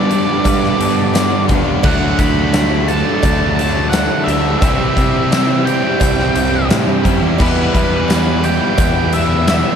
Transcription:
Already playing: overdriven electric guitar G2 D4, distorted electric guitar G2 D3 G3 B3 D4, picked electric bass G3, steel-string acoustic guitar G3 B3 A4, tonewheel organ B3 G4 A4 D5, lead electric guitar D5
0.10 distorted electric guitar G2 D3 G3 B3 D4 G4, muted overdriven electric guitar stroke, closed hi-hat
0.27 overdriven electric guitar G3 B3 D4
0.44 picked electric bass G2, steel-string acoustic guitar G3 B3 D4 A4, kick, closed hi-hat, cowbell
0.61 overdriven electric guitar G3 B3 D4, snare
0.78 picked electric bass G2, overdriven electric guitar D3 G3 B3, steel-string acoustic guitar A4, closed hi-hat
0.83 overdriven electric guitar D4
1.13 overdriven electric guitar G2 D3 G3 B3 D4, steel-string acoustic guitar A4, snare, closed hi-hat, tambourine, cowbell
1.31 overdriven electric guitar G3 B3 D4
1.48 picked electric bass D#2, distorted electric guitar G2, overdriven electric guitar D3 G3 B3 D4, steel-string acoustic guitar A4, kick, closed hi-hat
1.66 overdriven electric guitar G3 B3 D4
1.83 picked electric bass D2, overdriven electric guitar D3 F#3 A3 D4, distorted electric guitar D3 A3 D4, tonewheel organ D4 F#4 A4 E5, steel-string acoustic guitar E4, lead electric guitar F#5, kick, cowbell, crash
1.87 distorted electric guitar F#4
2.01 overdriven electric guitar F#3 A3 D4
2.17 picked electric bass D2, overdriven electric guitar D3 F#3 A3, steel-string acoustic guitar E4, lead electric guitar B5, kick, closed hi-hat
2.21 overdriven electric guitar D4
2.53 overdriven electric guitar D3 F#3 A3 D4, steel-string acoustic guitar E4, snare, closed hi-hat, tambourine, cowbell
2.88 distorted electric guitar D3 A3 D4 F#4, lead electric guitar A5, muted overdriven electric guitar stroke, closed hi-hat
3.07 overdriven electric guitar F#3 A3 D4
3.22 picked electric bass D2, steel-string acoustic guitar F#3 A3 D4 E4, kick, closed hi-hat, cowbell
3.40 overdriven electric guitar F#3 A3 D4
3.56 overdriven electric guitar D3 F#3 A3, steel-string acoustic guitar E4, lead electric guitar A5, closed hi-hat
3.60 overdriven electric guitar D4
3.90 overdriven electric guitar D3 F#3 A3, lead electric guitar F#5, snare, closed hi-hat, tambourine, cowbell
3.94 overdriven electric guitar D4, steel-string acoustic guitar E4
4.09 overdriven electric guitar F#3 A3 D4
4.24 picked electric bass D2, overdriven electric guitar D3 F#3, steel-string acoustic guitar E4, lead electric guitar E5
4.28 overdriven electric guitar A3 D4, closed hi-hat
4.44 overdriven electric guitar F#3 A3 D4
4.59 picked electric bass C2, overdriven electric guitar C3 G3, distorted electric guitar C3, steel-string acoustic guitar E3, tonewheel organ C4 E4 G4 E5, lead electric guitar E5, kick, closed hi-hat, cowbell
4.63 distorted electric guitar E3 G3 C4 G4, overdriven electric guitar C4 E4
4.79 overdriven electric guitar G3 C4 E4
4.96 overdriven electric guitar C3 G3 C4 E4, picked electric bass C3, kick, closed hi-hat
5.32 overdriven electric guitar C3 G3 C4 E4, steel-string acoustic guitar E3, snare, closed hi-hat, tambourine, cowbell
5.65 distorted electric guitar C3 E3 G3 C4 G4, lead electric guitar G5, muted overdriven electric guitar stroke, closed hi-hat
5.83 overdriven electric guitar G3 C4 E4
5.99 picked electric bass C2, steel-string acoustic guitar E3 G3 C4 E4, kick, closed hi-hat, cowbell
6.19 overdriven electric guitar G3 C4 E4, snare
6.35 picked electric bass C2, overdriven electric guitar C3 G3 C4 E4, closed hi-hat
6.69 picked electric bass A2, overdriven electric guitar C3 G3 C4 E4, steel-string acoustic guitar E3, snare, closed hi-hat, tambourine, cowbell
6.87 picked electric bass G2, overdriven electric guitar G3 C4 E4
7.03 picked electric bass F#2, overdriven electric guitar C3 G3 C4, distorted electric guitar E4, kick, closed hi-hat
7.08 overdriven electric guitar E4
7.22 picked electric bass E2, overdriven electric guitar G3 C4 E4
7.37 steel-string acoustic guitar E2 B2, distorted electric guitar E2 B2 E3 G3 B3, picked electric bass E2, overdriven electric guitar E3 G3, tonewheel organ B3 E4 G4 E5, kick, crash, cowbell
7.42 overdriven electric guitar B3 E4, distorted electric guitar G4, lead electric guitar B4
7.58 overdriven electric guitar G3 B3 E4
7.74 picked electric bass E2, overdriven electric guitar E3 G3 B3, lead electric guitar B4, kick, closed hi-hat
7.78 overdriven electric guitar E4
8.08 steel-string acoustic guitar E2 B2, overdriven electric guitar E3 G3 B3, snare, closed hi-hat, tambourine, cowbell
8.13 overdriven electric guitar E4
8.42 distorted electric guitar E2 B2 E3 G3 B3 G4, lead electric guitar G5, muted overdriven electric guitar stroke, closed hi-hat
8.61 overdriven electric guitar G3 B3 E4
8.78 picked electric bass E2, steel-string acoustic guitar E3 G3 B3, lead electric guitar G5, kick, closed hi-hat, cowbell
8.82 steel-string acoustic guitar E4
8.96 overdriven electric guitar G3 B3 E4
9.13 overdriven electric guitar E3 G3 B3 E4, lead electric guitar E5, closed hi-hat
9.47 steel-string acoustic guitar E2 B2, overdriven electric guitar E3 G3 B3, lead electric guitar E5, snare, closed hi-hat, tambourine, cowbell
9.52 overdriven electric guitar E4
9.66 overdriven electric guitar G3 B3 E4

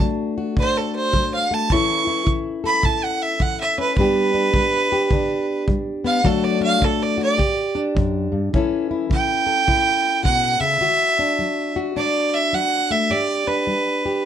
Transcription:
Already playing: steel-string acoustic guitar A3 D4 F#4
0.00 steel-string acoustic guitar F#3, kick
0.38 steel-string acoustic guitar F#4
0.57 steel-string acoustic guitar A2 D4, fiddle C5, kick
0.77 fiddle A4
0.96 fiddle C5
1.13 steel-string acoustic guitar F#3, kick
1.34 fiddle F5
1.51 steel-string acoustic guitar A3, fiddle A5
1.70 steel-string acoustic guitar A2 E3 C#4 E4, fiddle C#6, kick
1.74 steel-string acoustic guitar A4
2.07 steel-string acoustic guitar E4
2.27 steel-string acoustic guitar E3, kick
2.64 steel-string acoustic guitar A4, fiddle B5
2.83 steel-string acoustic guitar A2 E4, fiddle A5, kick
3.04 fiddle F#5
3.22 fiddle E5
3.40 steel-string acoustic guitar E3, fiddle F#5, kick
3.61 fiddle E5
3.78 steel-string acoustic guitar C#4, fiddle B4
3.97 steel-string acoustic guitar G2 G3 B3 D4, fiddle B4, kick
4.01 steel-string acoustic guitar G4
4.34 steel-string acoustic guitar D4
4.54 steel-string acoustic guitar G3, kick
4.92 steel-string acoustic guitar G4
5.11 steel-string acoustic guitar D3 D4, kick
5.68 steel-string acoustic guitar G3, kick
6.04 steel-string acoustic guitar B3, fiddle F5
6.24 steel-string acoustic guitar D3 F#3 A3 D4 F#4, fiddle A4, kick
6.44 fiddle D5
6.61 steel-string acoustic guitar D4, fiddle F5
6.81 steel-string acoustic guitar F#3, fiddle A4, kick
7.03 fiddle D5
7.18 steel-string acoustic guitar F#4
7.22 fiddle D5
7.38 steel-string acoustic guitar G2 G4, kick
7.75 steel-string acoustic guitar D4
7.95 steel-string acoustic guitar F#2, kick
8.32 steel-string acoustic guitar G2
8.53 steel-string acoustic guitar A2 E3 C#4 E4 A4, kick
8.91 steel-string acoustic guitar E4
9.10 steel-string acoustic guitar E3, fiddle G5, kick
9.47 steel-string acoustic guitar A4
9.67 steel-string acoustic guitar A2 E4, kick
10.23 steel-string acoustic guitar B2, fiddle F#5, kick
10.60 steel-string acoustic guitar C#3, fiddle E5
10.81 steel-string acoustic guitar D3 F#4
11.19 steel-string acoustic guitar D4
11.39 steel-string acoustic guitar F#3
11.76 steel-string acoustic guitar F#4
11.96 steel-string acoustic guitar A2 D4, fiddle D5
12.34 fiddle E5
12.53 steel-string acoustic guitar F#3, fiddle F#5
12.91 steel-string acoustic guitar A3, fiddle E5
13.10 steel-string acoustic guitar G2 G4, fiddle D5
13.47 steel-string acoustic guitar D4, fiddle B4
13.67 steel-string acoustic guitar G3
14.06 steel-string acoustic guitar G4

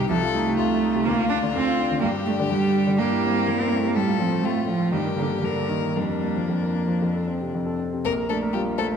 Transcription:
Already playing: grand piano C2 D#4 G4
0.00 grand piano G2
0.09 grand piano C2, cello F3, violin A4
0.22 grand piano F4
0.34 cello A3, grand piano D#4
0.47 grand piano C3
0.57 grand piano C2, violin F4
0.71 grand piano F4
0.83 grand piano D#4
0.95 grand piano C3
1.05 grand piano D2, cello A#3, violin F4
1.18 grand piano F4
1.29 cello D4, grand piano D4
1.43 grand piano D3
1.54 grand piano D2, cello C4
1.67 grand piano F4
1.78 grand piano D4
1.91 grand piano D3
2.01 grand piano G2, cello A#3, violin G4
2.15 grand piano G4
2.26 cello A3, grand piano D4
2.40 grand piano D3
2.50 grand piano G2, cello G3
2.63 grand piano G4
2.75 grand piano D4
2.87 grand piano D3
2.98 grand piano G2, cello A#3, violin G4
3.11 grand piano E4
3.23 grand piano C4
3.35 grand piano G3
3.47 grand piano G2, violin A#4
3.60 cello C4, grand piano E4
3.68 cello A#3, grand piano C4
3.77 cello A3
3.84 grand piano G3, cello A#3
3.95 grand piano A2, cello G3, violin A4
4.07 grand piano F4
4.20 cello F3, grand piano C4
4.32 grand piano A3
4.43 grand piano A2, cello A3, violin F4
4.55 grand piano F4
4.68 cello F3, grand piano C4
4.80 grand piano A3
4.92 grand piano G2, cello D#3, violin G4
5.05 grand piano A#4
5.17 cello D3, grand piano A#3
5.31 grand piano G3
5.43 grand piano G2, cello D3, violin A#4
5.56 grand piano A#4
5.69 cello D#3, grand piano A#3
5.83 grand piano G3
5.95 grand piano F2, cello G3, violin D4
6.09 grand piano A#4
6.23 grand piano A#3
6.36 grand piano F3
6.47 grand piano F2, cello F3
6.62 grand piano A#4
6.75 grand piano A#3
6.88 grand piano F3
7.02 grand piano F2
7.14 grand piano A4
7.27 grand piano C4
7.41 grand piano C3
7.54 grand piano F2
7.66 grand piano A4
7.79 grand piano C4
7.93 grand piano C3
8.05 grand piano A#1, cello A#3, violin A#4
8.17 grand piano A#4
8.29 cello A3, grand piano D4, violin A4
8.42 grand piano A#4
8.53 cello G3, grand piano F4, violin G4
8.67 grand piano A#4
8.78 cello A3, violin A4, grand piano C5
8.90 grand piano A#4

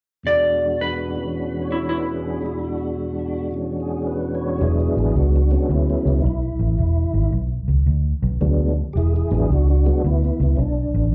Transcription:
0.23 tonewheel organ E2 B2 G#3 D4, electric slide guitar D5
0.28 tonewheel organ F#4
0.81 electric slide guitar B4
1.15 tonewheel organ B2 E3 C#4
1.62 tonewheel organ C#5
1.72 electric slide guitar E4
1.89 electric slide guitar E4, tonewheel organ B4
2.16 tonewheel organ G#4
2.41 tonewheel organ E2 B2 G#3 D4
2.46 tonewheel organ F#4
3.51 tonewheel organ B2 E3 C#4
3.80 tonewheel organ G#4
4.07 tonewheel organ B4
4.35 tonewheel organ C#5
4.58 fingered electric bass E1, tonewheel organ F#3 G#3 B3 D4 G4
4.63 tonewheel organ E4 G#4
4.80 tonewheel organ E4 G#4
4.97 fingered electric bass A1, tonewheel organ E4 G#4
5.15 fingered electric bass C#2, tonewheel organ D4 F#4
5.35 tonewheel organ D4 F#4
5.51 tonewheel organ F#3 G#3 B3 C#4 D4 F#4
5.69 fingered electric bass D2, tonewheel organ B3 E4
5.89 tonewheel organ B3 E4
6.05 fingered electric bass C#2, tonewheel organ B3 E4
6.22 fingered electric bass B1, tonewheel organ D#4
6.27 tonewheel organ E4
6.59 fingered electric bass A1
6.78 fingered electric bass E1
7.14 fingered electric bass G#1
7.32 fingered electric bass B1
7.68 fingered electric bass C#2
7.86 fingered electric bass D2
8.22 fingered electric bass B1
8.41 fingered electric bass D2, tonewheel organ F#3 G#3 B3 D4
8.93 fingered electric bass E1, tonewheel organ E4 G4
8.98 tonewheel organ G#4
9.16 tonewheel organ E4 G#4
9.31 fingered electric bass A1, tonewheel organ F#3 G#3 B3 D4 E4 G#4
9.50 fingered electric bass C#2, tonewheel organ D4 F#4
9.70 tonewheel organ D4 F#4
9.86 tonewheel organ F#3 G#3 B3 D4 F#4
10.04 fingered electric bass D2, tonewheel organ B3 E4
10.24 tonewheel organ B3 E4
10.40 fingered electric bass C#2, tonewheel organ B3 E4
10.57 fingered electric bass B1, tonewheel organ C#4
10.61 tonewheel organ D4
10.94 fingered electric bass A1

